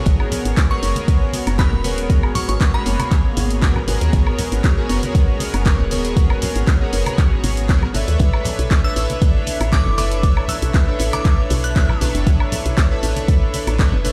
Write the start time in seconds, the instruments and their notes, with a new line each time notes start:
Already playing: analog polysynth B3 F#4 G#4 A#4 C#5
0.06 fm bass G#1, string machine G#3 C#4 F#4 C#5, kick, closed hi-hat, ride, cabasa
0.20 high woodblock
0.32 open hi-hat, ride, low conga, cabasa
0.45 fm bass G#1, closed hi-hat, cabasa
0.57 kick, snare, clap, closed hi-hat, ride, cabasa
0.70 analog polysynth B3 F#4 G#4 A#4 C#5, synth bell C#6, ride
0.82 fm bass F#1, analog polysynth B3 F#4 G#4 A#4 C#5, open hi-hat, ride, cabasa
0.96 closed hi-hat, high conga, cabasa
1.08 kick, closed hi-hat, ride, cabasa
1.33 open hi-hat, ride, high conga, cabasa
1.47 fm bass F#1, snare, closed hi-hat, cabasa, high woodblock
1.58 analog polysynth B3 F#4 G#4 A#4 C#5, synth bell B5, kick, snare, clap, closed hi-hat, ride, cabasa
1.72 fm bass D#1, low conga
1.84 analog polysynth B3 F#4 G#4 A#4 C#5, open hi-hat, ride, high conga, cabasa
1.98 closed hi-hat, cabasa
2.10 kick, closed hi-hat, ride, cabasa
2.23 ride, high woodblock
2.35 synth bell C#6, open hi-hat, ride, low conga, cabasa
2.49 fm bass G#1, synth bell C#6, closed hi-hat, cabasa
2.60 kick, snare, clap, closed hi-hat, ride, cabasa
2.74 analog polysynth B3 F#4 G#4 A#4 C#5, synth bell B5
2.85 fm bass F#1, analog polysynth A#3 B3 F#4 G#4 C#5, open hi-hat, ride, cabasa
2.99 closed hi-hat, ride, high conga, cabasa, high woodblock
3.11 kick, clap, closed hi-hat, ride, cabasa
3.37 fm bass G#1, open hi-hat, ride, high conga, cabasa
3.50 closed hi-hat, ride, cabasa
3.61 analog polysynth B3 F#4 G#4 A#4 C#5, kick, snare, clap, closed hi-hat, ride, cabasa
3.76 low conga, high woodblock
3.87 fm bass G#1, analog polysynth B3 F#4 G#4 A#4 C#5, open hi-hat, ride, high conga, cabasa
4.01 fm bass D#2, closed hi-hat, cabasa
4.13 fm bass G#1, string machine G#4, kick, closed hi-hat, ride, cabasa
4.27 high woodblock
4.39 open hi-hat, ride, low conga, cabasa
4.52 fm bass G#1, closed hi-hat, cabasa
4.63 kick, snare, clap, closed hi-hat, ride, cabasa
4.77 analog polysynth B3 F#4 G#4 A#4 C#5, ride
4.89 fm bass F#1, analog polysynth B3 F#4 G#4 A#4 C#5, open hi-hat, ride, cabasa
5.03 closed hi-hat, high conga, cabasa
5.15 kick, closed hi-hat, ride, cabasa
5.40 open hi-hat, ride, high conga, cabasa
5.53 fm bass F#1, snare, closed hi-hat, cabasa, high woodblock
5.65 analog polysynth B3 F#4 G#4 A#4 C#5, kick, snare, clap, closed hi-hat, ride, cabasa
5.79 fm bass D#1, low conga
5.90 analog polysynth B3 F#4 G#4 A#4 C#5, open hi-hat, ride, high conga, cabasa
6.05 closed hi-hat, cabasa
6.17 kick, closed hi-hat, ride, cabasa
6.30 ride, high woodblock
6.42 open hi-hat, ride, low conga, cabasa
6.56 fm bass G#1, closed hi-hat, cabasa
6.67 kick, snare, clap, closed hi-hat, ride, cabasa
6.81 analog polysynth B3 F#4 G#4 A#4 C#5
6.92 fm bass F#1, analog polysynth B3 F#4 G#4 A#4 C#5, open hi-hat, ride, cabasa
7.06 closed hi-hat, ride, high conga, cabasa, high woodblock
7.18 kick, clap, closed hi-hat, ride, cabasa
7.44 fm bass G#1, open hi-hat, ride, high conga, cabasa
7.57 closed hi-hat, cabasa
7.69 analog polysynth B3 F#4 G#4 A#4 C#5, kick, snare, clap, closed hi-hat, ride, cabasa
7.82 low conga, high woodblock
7.94 fm bass G#1, analog polysynth D4 A4 B4 C#5 E5, open hi-hat, ride, high conga, cabasa
8.08 fm bass D#2, closed hi-hat, cabasa
8.19 fm bass B1, string machine D4 E4 A4 C#5, kick, closed hi-hat, ride, cabasa
8.34 high woodblock
8.44 open hi-hat, ride, low conga, cabasa
8.59 fm bass B1, closed hi-hat, cabasa
8.71 kick, snare, clap, closed hi-hat, ride, cabasa
8.84 analog polysynth D4 A4 B4 C#5 E5, synth bell E6, ride
8.96 fm bass A1, analog polysynth D4 A4 B4 C#5 E5, open hi-hat, ride, cabasa
9.10 closed hi-hat, high conga, cabasa
9.22 kick, closed hi-hat, ride, cabasa
9.46 open hi-hat, ride, high conga, cabasa
9.60 fm bass A1, snare, closed hi-hat, cabasa, high woodblock
9.72 analog polysynth D4 A4 B4 C#5 E5, synth bell D6, kick, snare, clap, closed hi-hat, ride, cabasa
9.86 fm bass F#1, low conga
9.97 analog polysynth D4 A4 B4 C#5 E5, synth bell D6, open hi-hat, ride, high conga, cabasa
10.12 closed hi-hat, cabasa
10.23 kick, closed hi-hat, ride, cabasa
10.37 ride, high woodblock
10.48 synth bell E6, open hi-hat, ride, low conga, cabasa
10.62 fm bass B1, closed hi-hat, cabasa
10.74 kick, snare, clap, closed hi-hat, ride, cabasa
10.87 analog polysynth D4 A4 B4 C#5 E5
10.99 fm bass A1, analog polysynth D4 A4 B4 C#5 E5, open hi-hat, ride, cabasa
11.13 synth bell D6, closed hi-hat, ride, high conga, cabasa, high woodblock
11.25 kick, clap, closed hi-hat, ride, cabasa
11.50 fm bass B1, open hi-hat, ride, high conga, cabasa
11.64 synth bell F#6, closed hi-hat, ride, cabasa
11.76 analog polysynth D4 A4 B4 C#5 E5, kick, snare, clap, closed hi-hat, ride, cabasa
11.89 low conga, high woodblock
12.01 fm bass B1, analog polysynth D4 A4 B4 C#5 E5, open hi-hat, ride, high conga, cabasa
12.15 fm bass F#1, closed hi-hat, cabasa
12.26 fm bass B1, kick, closed hi-hat, ride, cabasa
12.40 high woodblock
12.52 open hi-hat, ride, low conga, cabasa
12.66 fm bass B1, closed hi-hat, cabasa
12.77 kick, snare, clap, closed hi-hat, ride, cabasa
12.90 analog polysynth D4 A4 B4 C#5 E5, ride
13.02 fm bass A1, analog polysynth D4 A4 B4 C#5 E5, open hi-hat, ride, cabasa
13.16 closed hi-hat, high conga, cabasa
13.28 kick, closed hi-hat, ride, cabasa
13.54 open hi-hat, ride, high conga, cabasa
13.67 fm bass A1, snare, closed hi-hat, cabasa, high woodblock
13.79 analog polysynth D4 A4 B4 C#5 E5, kick, snare, clap, closed hi-hat, ride, cabasa
13.92 fm bass F#1, low conga
14.04 analog polysynth D4 A4 B4 C#5 E5, open hi-hat, ride, high conga, cabasa